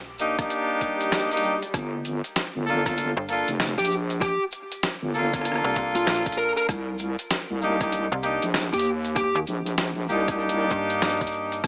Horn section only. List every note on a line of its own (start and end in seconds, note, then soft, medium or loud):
0.20 0.36 A#3 medium
0.20 0.36 D4 medium
0.20 0.36 D#4 medium
0.20 0.36 G4 loud
0.39 1.28 A#3 medium
0.39 1.28 D4 medium
0.39 1.28 D#4 medium
0.39 1.28 G4 loud
1.31 1.55 A#3 medium
1.31 1.55 D4 medium
1.31 1.55 D#4 medium
1.31 1.55 G4 loud
2.67 2.83 A#3 medium
2.67 2.83 D4 medium
2.67 2.83 F4 medium
2.67 2.83 A4 loud
2.86 3.10 A#3 medium
2.86 3.10 D4 medium
2.86 3.10 F4 medium
2.86 3.10 A4 medium
3.29 3.48 A#3 medium
3.29 3.48 D4 medium
3.29 3.48 F4 medium
3.29 3.48 A4 medium
5.14 5.31 A#3 medium
5.14 5.31 D4 medium
5.14 5.31 F4 medium
5.14 5.31 A4 medium
5.34 6.68 A#3 loud
5.34 6.68 D4 medium
5.34 6.68 F4 medium
5.34 6.68 A4 loud
7.62 7.78 A#3 medium
7.62 7.78 D4 medium
7.62 7.78 D#4 medium
7.62 7.78 G4 loud
7.80 8.05 A#3 medium
7.80 8.05 D4 medium
7.80 8.05 D#4 medium
7.80 8.05 G4 loud
8.23 8.43 A#3 medium
8.23 8.43 D4 medium
8.23 8.43 D#4 medium
8.23 8.43 G4 loud
10.09 10.25 A#3 medium
10.09 10.25 D4 medium
10.09 10.25 D#4 medium
10.09 10.25 G4 loud
10.28 11.62 A#3 loud
10.28 11.62 D4 medium
10.28 11.62 D#4 medium
10.28 11.62 G4 loud